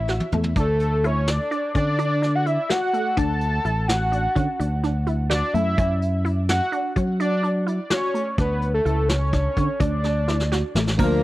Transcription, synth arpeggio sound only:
0.09 F#4
0.33 A3
0.56 D4
1.04 E4
1.51 D4
1.75 C#4
1.99 D4
2.22 D4
2.46 E4
2.70 F#4
2.93 A3
3.17 D4
3.65 E4
4.12 D4
4.36 C#4
4.60 D4
4.84 D4
5.07 E4
5.30 F#4
5.54 A3
5.78 C#4
6.25 E4
6.72 D4
6.96 C#4
7.20 D4
7.43 D4
7.67 E4
7.90 F#4
8.14 A3
8.38 D4
8.85 E4
9.33 D4
9.57 C#4
9.80 D4
10.04 D4
10.28 E4
10.52 F#4
10.76 A3
10.99 A#3

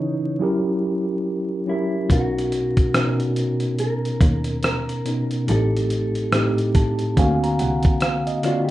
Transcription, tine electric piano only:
Already playing: C#3 E3 C#4 D#4 E4 B4 C#5
0.39 F#3 C#4 E4 G4 A#4
1.66 F#3 C#4 E4 G4 A#4
2.09 B2 B3 C#4 D#4 A#4
2.93 B2 B3 C#4 D#4 A#4
5.04 B2 B3 C#4 D#4 A#4
5.47 A2 A3 C4 D#4 G4
6.31 A2 A3 C4 D#4 G4
6.75 A5
7.16 D3 A#3 C4 F#4 F5 G#5
7.43 A#5
7.60 F#5
8.02 F5
8.27 D#5
8.42 D3 A#3 C4 F4 F#4 D5

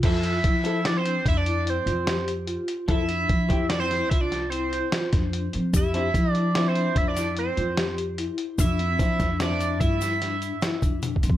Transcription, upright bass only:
0.03 F2
0.44 F3
1.25 F2
1.86 F2
2.88 F2
3.29 F3
3.50 F2
4.11 C2
5.13 F2
5.55 F3
5.73 F2
6.14 F3
6.96 F2
7.57 F2
8.58 F2
8.99 F3
9.20 F2
9.81 G2
10.82 F2
11.23 F3

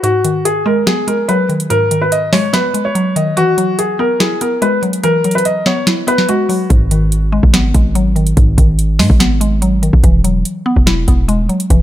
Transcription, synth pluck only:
0.03 G#2
0.24 D#3
0.66 G#3
0.87 B3
1.08 G#3
1.29 F#3
1.49 D#3
1.70 G#2
1.91 D#3
2.33 G#3
2.53 B3
2.74 G#3
2.95 F#3
3.16 D#3
3.37 E3
3.58 F#3
3.99 B3
4.20 E4
4.41 B3
4.62 G#3
4.83 F#3
5.04 E3
5.25 F#3
5.66 B3
5.87 E4
6.07 B3
6.29 G#3
6.49 F#3
6.70 G#2
6.91 D#3
7.32 G#3
7.53 B3
7.74 G#3
7.95 F#3
8.16 D#3
8.37 G#2
8.58 D#3
8.99 G#3
9.20 B3
9.41 G#3
9.62 F#3
9.83 D#3
10.04 E3
10.24 F#3
10.66 B3
10.87 E4
11.08 B3
11.28 G#3
11.49 F#3
11.70 E3

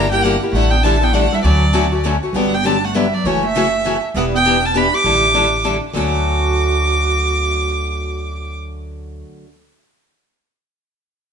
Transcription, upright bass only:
Already playing: G1
0.53 A1
1.44 D2
2.33 G1
3.24 F#1
4.14 E1
5.04 A1
5.94 D2

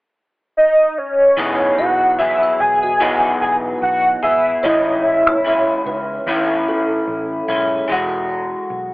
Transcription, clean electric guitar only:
1.37 E3 F#3 B3 D#4 G#4
2.19 F#3 B3 G#4
3.00 E3 F#3 B3 D#4 G#4
4.23 B3 G#4
4.63 A2 E3 G#3 C#4 E4
5.44 E3 G#3 C#4 E4
6.27 A2 E3 C#4 E4
7.48 G#3 C#4 E4
7.88 E3 G#3
7.92 F#4

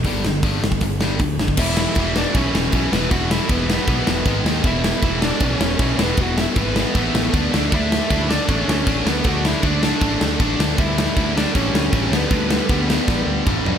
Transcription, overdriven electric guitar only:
1.59 E4 E5
2.18 D4 D5
2.36 C#4 C#5
2.92 B3 B4
3.10 F#4 F#5
3.30 E4 E5
3.51 B3 B4
4.66 E4 E5
5.22 D4 D5
5.43 C#4 D5
5.56 C#5
6.02 B3 B4
6.21 F#4 F#5
6.40 E4 E5
6.61 B3 B4
7.74 E4 E5
8.30 D4 D5
8.49 C#4 C#5
9.09 B3 B4
9.27 F#4 F#5
9.45 E4 E5
9.66 D4 D5
10.80 E4 E5
11.36 D4 D5
11.55 C#4 C#5
12.15 B3 B4

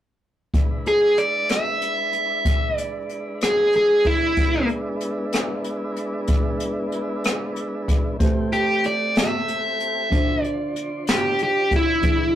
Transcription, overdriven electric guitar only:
0.88 G#4
1.18 D5
1.51 E5
2.78 D5
3.43 G#4
3.76 G#4
4.07 E4
8.53 G4
8.86 D5
9.20 E5
10.43 D5
11.10 G4
11.43 G4
11.76 E4

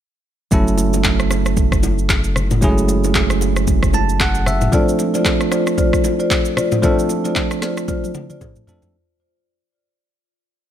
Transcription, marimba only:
4.72 F4 C5 D5
5.14 F4 C5 D5
5.51 F4 C5 D5
5.78 F4 C5 D5
6.19 F4 C5 D5
6.57 F4 C5 D5
6.83 F4 C5 D5
7.25 F4 C5 D5
7.62 F4 C5 D5
7.88 F4 C5 D5
8.30 F4 C5 D5
8.67 F4 C5 D5

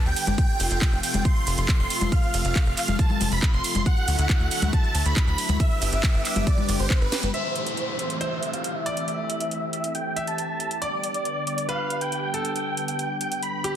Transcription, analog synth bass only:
0.06 D2
0.27 G1
0.60 F1
0.71 F1
0.93 F1
1.14 F1
1.47 F1
1.58 F1
1.79 F1
2.01 F1
2.34 F1
2.45 F1
2.66 F1
2.88 F1
3.21 F1
3.32 F1
3.53 F1
3.75 F1
4.08 D2
4.19 D2
4.40 D2
4.62 D2
4.95 D2
5.06 D2
5.27 D2
5.49 D2
5.82 G1
5.93 G1
6.14 G1
6.36 G1
6.69 G1
6.80 G1
7.01 G1
7.23 G1

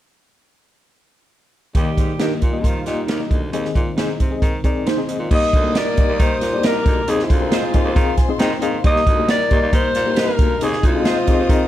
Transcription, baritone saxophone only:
1.75 D#2
1.97 G#2
2.19 G2
2.42 A#2
2.64 D#3
2.86 A#2
3.08 D#2
3.31 D2
3.52 D#2
3.75 A#2
3.97 G#2
4.20 C3
4.42 D#3
4.64 D#3
5.08 G#2
5.19 A#2
5.31 D#2
5.53 D2
5.98 D#2
6.08 D#2
6.19 D#3
6.41 A#2
6.63 C2
6.85 D2
7.07 D#2
7.30 D2
7.74 D#2
7.84 D#2
7.96 D#3
8.39 D#3
8.61 D#3
8.84 D#2
9.07 D2
9.51 D#2
9.62 D#2
9.72 D#3
9.95 A#2
10.17 C2
10.39 D2
10.62 D#2
10.83 D2
11.28 D#2
11.38 D#2
11.49 D#3

